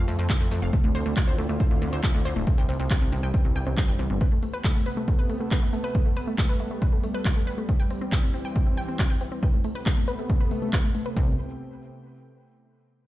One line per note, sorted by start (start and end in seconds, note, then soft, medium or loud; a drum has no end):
0.00 0.71 F3 medium
0.00 2.44 A3 medium
0.00 4.17 C4 medium
0.00 downlifter medium
0.08 0.17 F2 medium
0.08 0.14 A3 medium
0.08 open hi-hat loud
0.19 0.28 F2 medium
0.19 0.23 A3 medium
0.19 closed hi-hat soft
0.30 0.34 F5 loud
0.30 kick loud
0.30 clap loud
0.30 closed hi-hat medium
0.41 0.50 F2 medium
0.41 0.46 A3 medium
0.41 closed hi-hat soft
0.51 0.60 F2 loud
0.51 0.55 A3 medium
0.51 open hi-hat loud
0.62 0.71 F1 medium
0.62 0.66 F5 loud
0.62 closed hi-hat soft
0.73 2.45 D3 medium
0.73 0.79 A3 medium
0.73 2.45 E4 medium
0.73 2.45 F4 medium
0.73 kick loud
0.73 closed hi-hat medium
0.84 0.93 D2 medium
0.84 0.88 A3 medium
0.84 closed hi-hat soft
0.95 1.04 D2 loud
0.95 0.99 C5 loud
0.95 open hi-hat loud
1.06 1.15 D2 medium
1.06 1.12 A3 medium
1.06 closed hi-hat soft
1.17 1.21 A3 medium
1.17 kick loud
1.17 clap loud
1.17 closed hi-hat medium
1.27 1.36 D2 medium
1.27 1.31 C5 loud
1.27 closed hi-hat soft
1.38 1.47 D2 medium
1.38 1.44 A3 medium
1.38 open hi-hat loud
1.49 1.58 D2 medium
1.49 1.53 A3 medium
1.49 closed hi-hat soft
1.60 1.64 C5 medium
1.60 kick loud
1.60 closed hi-hat medium
1.71 1.80 D2 medium
1.71 1.77 A3 medium
1.71 closed hi-hat soft
1.82 1.91 D2 loud
1.82 1.86 A3 medium
1.82 open hi-hat loud
1.93 2.02 D2 medium
1.93 1.97 C5 loud
1.93 closed hi-hat soft
2.04 2.09 A3 medium
2.04 kick loud
2.04 clap loud
2.04 closed hi-hat medium
2.14 2.23 D2 medium
2.14 2.18 A3 medium
2.14 closed hi-hat soft
2.25 2.34 D2 loud
2.25 2.29 C5 loud
2.25 open hi-hat loud
2.36 2.45 D1 medium
2.36 2.42 A3 medium
2.36 closed hi-hat soft
2.47 4.19 E3 medium
2.47 4.19 G3 medium
2.47 2.51 C4 medium
2.47 kick loud
2.47 closed hi-hat medium
2.58 2.67 C2 medium
2.58 2.62 G5 loud
2.58 closed hi-hat soft
2.69 2.78 C2 medium
2.69 2.75 C4 medium
2.69 open hi-hat loud
2.80 2.89 C2 medium
2.80 2.84 C4 medium
2.80 closed hi-hat soft
2.90 2.94 G5 medium
2.90 kick loud
2.90 clap loud
2.90 closed hi-hat medium
3.01 3.10 C2 medium
3.01 3.07 C4 medium
3.01 closed hi-hat soft
3.12 3.21 C2 loud
3.12 3.16 C4 medium
3.12 open hi-hat loud
3.23 3.32 C2 medium
3.23 3.27 G5 loud
3.23 closed hi-hat soft
3.34 3.40 C4 medium
3.34 kick loud
3.34 closed hi-hat medium
3.45 3.54 C2 medium
3.45 3.49 C4 medium
3.45 closed hi-hat soft
3.56 3.65 C2 medium
3.56 3.60 G5 loud
3.56 open hi-hat loud
3.67 3.76 C2 medium
3.67 3.73 C4 medium
3.67 closed hi-hat soft
3.77 3.81 C4 medium
3.77 kick loud
3.77 clap loud
3.77 closed hi-hat medium
3.88 3.97 G1 medium
3.88 3.92 G5 loud
3.88 closed hi-hat soft
3.99 4.08 C2 loud
3.99 4.05 C4 medium
3.99 open hi-hat loud
4.10 4.19 G1 medium
4.10 4.14 C4 medium
4.10 closed hi-hat soft
4.21 5.93 C3 medium
4.21 7.65 A3 medium
4.21 7.65 B3 medium
4.21 4.25 B4 loud
4.21 kick loud
4.21 closed hi-hat medium
4.32 4.38 A3 medium
4.32 closed hi-hat soft
4.43 4.47 A3 medium
4.43 open hi-hat loud
4.54 4.57 B4 loud
4.54 closed hi-hat soft
4.64 4.70 A3 medium
4.64 kick loud
4.64 clap loud
4.64 closed hi-hat medium
4.75 4.79 A3 medium
4.75 closed hi-hat soft
4.86 4.90 B4 loud
4.86 open hi-hat loud
4.97 5.03 A3 medium
4.97 closed hi-hat soft
5.08 5.12 A3 medium
5.08 kick loud
5.08 closed hi-hat medium
5.19 5.23 B4 loud
5.19 closed hi-hat soft
5.30 5.36 A3 medium
5.30 open hi-hat loud
5.40 5.44 A3 medium
5.40 closed hi-hat soft
5.51 5.55 B4 loud
5.51 kick loud
5.51 clap loud
5.51 closed hi-hat medium
5.62 5.68 A3 medium
5.62 closed hi-hat soft
5.73 5.77 A3 medium
5.73 open hi-hat loud
5.84 5.88 B4 loud
5.84 closed hi-hat soft
5.95 9.39 G3 medium
5.95 6.01 A3 medium
5.95 kick loud
5.95 closed hi-hat medium
6.06 6.10 A3 medium
6.06 closed hi-hat soft
6.17 6.21 B4 loud
6.17 open hi-hat loud
6.27 6.33 A3 medium
6.27 closed hi-hat soft
6.38 6.42 A3 medium
6.38 kick loud
6.38 clap loud
6.38 closed hi-hat medium
6.49 6.53 B4 loud
6.49 closed hi-hat soft
6.60 6.66 A3 medium
6.60 open hi-hat loud
6.71 6.75 A3 medium
6.71 closed hi-hat soft
6.82 6.86 B4 loud
6.82 kick loud
6.82 closed hi-hat medium
6.93 6.99 A3 medium
6.93 closed hi-hat soft
7.04 7.07 A3 medium
7.04 open hi-hat loud
7.14 7.18 B4 loud
7.14 closed hi-hat soft
7.25 7.31 A3 medium
7.25 kick loud
7.25 clap loud
7.25 closed hi-hat medium
7.36 7.40 A3 medium
7.36 closed hi-hat soft
7.47 7.51 B4 loud
7.47 open hi-hat loud
7.58 7.64 A3 medium
7.58 closed hi-hat soft
7.69 9.41 E3 medium
7.69 7.73 C4 medium
7.69 9.41 C4 medium
7.69 kick loud
7.69 closed hi-hat medium
7.80 7.84 G5 loud
7.80 closed hi-hat soft
7.90 7.96 C4 medium
7.90 open hi-hat loud
8.01 8.05 C4 medium
8.01 closed hi-hat soft
8.12 8.16 G5 loud
8.12 kick loud
8.12 clap loud
8.12 closed hi-hat medium
8.23 8.29 C4 medium
8.23 closed hi-hat soft
8.34 8.38 C4 medium
8.34 open hi-hat loud
8.45 8.49 G5 loud
8.45 closed hi-hat soft
8.56 8.62 C4 medium
8.56 kick loud
8.56 closed hi-hat medium
8.67 8.71 C4 medium
8.67 closed hi-hat soft
8.77 8.81 G5 loud
8.77 open hi-hat loud
8.88 8.94 C4 medium
8.88 closed hi-hat soft
8.99 9.03 C4 medium
8.99 kick loud
8.99 clap loud
8.99 closed hi-hat medium
9.10 9.14 G5 loud
9.10 closed hi-hat soft
9.21 9.27 C4 medium
9.21 open hi-hat loud
9.32 9.36 C4 medium
9.32 closed hi-hat soft
9.43 11.15 C3 medium
9.43 11.15 A3 medium
9.43 11.15 B3 medium
9.43 9.47 B4 loud
9.43 kick loud
9.43 closed hi-hat medium
9.54 9.59 A3 medium
9.54 closed hi-hat soft
9.64 9.68 A3 medium
9.64 open hi-hat loud
9.75 9.79 B4 loud
9.75 closed hi-hat soft
9.86 9.92 A3 medium
9.86 kick loud
9.86 clap loud
9.86 closed hi-hat medium
9.97 10.01 A3 medium
9.97 closed hi-hat soft
10.08 10.12 B4 loud
10.08 open hi-hat loud
10.19 10.25 A3 medium
10.19 closed hi-hat soft
10.30 10.34 A3 medium
10.30 kick loud
10.30 closed hi-hat medium
10.40 10.44 B4 loud
10.40 closed hi-hat soft
10.51 10.57 A3 medium
10.51 open hi-hat loud
10.62 10.66 A3 medium
10.62 closed hi-hat soft
10.73 10.77 B4 loud
10.73 kick loud
10.73 clap loud
10.73 closed hi-hat medium
10.84 10.90 A3 medium
10.84 closed hi-hat soft
10.95 10.99 A3 medium
10.95 open hi-hat loud
11.06 11.10 B4 loud
11.06 closed hi-hat soft
11.17 11.37 C2 loud
11.17 11.37 C4 medium
11.17 kick loud